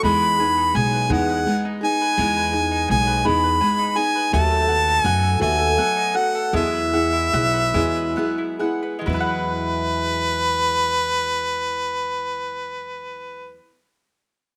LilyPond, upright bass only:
\new Staff \with { instrumentName = "Upright bass" } { \clef bass \time 6/8 \key e \major \tempo 4. = 52 e,4 b,,8 e,8 r4 | e,4 b,,8 e,8 r4 | dis,4 fis,8 dis,8 r4 | e,4 b,,8 e,8 r4 |
e,2.~ | e,2. | }